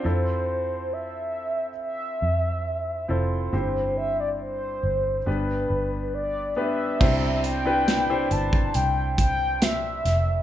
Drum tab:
CC |----------------|----------------|x---------------|
HH |----------------|----------------|--x-x-x-x-x-x-x-|
SD |----------------|----------------|----o-------o-o-|
BD |----------------|----------------|o------o--o-----|